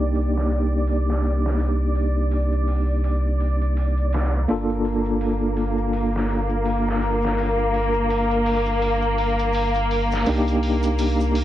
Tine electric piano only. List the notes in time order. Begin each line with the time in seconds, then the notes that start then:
Already playing: A#3 D4 D#4 G4
4.48 A#3 D4 F4 A4
10.27 A#3 D4 D#4 G4